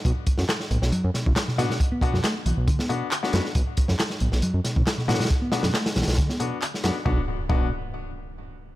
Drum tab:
HH |x---x---x---x---x---x---x---x---|x---x---x---x---x---x---x---x---|x---x---x---x---x---x---x---xxxx|x---x-x-x-x-xxxxx---x---x---x---|
CP |--------x---------------x-------|--------x---------------x-------|--------x---------------x-------|--------x---------------x-------|
SD |------o-o-o---o-----o---o-o-o-o-|------o-o---------o-------o-o-o-|------o-o-o---o-----o---o-o-oooo|----o-o-o-o-oooo--o-------o-o---|
BD |o---o-----------------o---------|o---o-----------o---------------|o---o-----------------o---------|o---------------o---------------|

HH |--------------------------------|
CP |--------------------------------|
SD |--------------------------------|
BD |o-------o-----------------------|